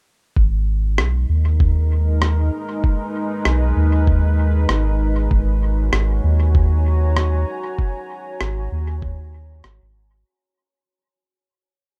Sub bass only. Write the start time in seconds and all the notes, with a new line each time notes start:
0.36 G#1
0.98 B1
1.29 D#2
3.45 B1
3.76 D#2
4.69 G#1
5.31 G#1
5.93 G#1
6.24 D#2
8.41 G#1
8.72 D#2
9.64 G#1
9.82 G#1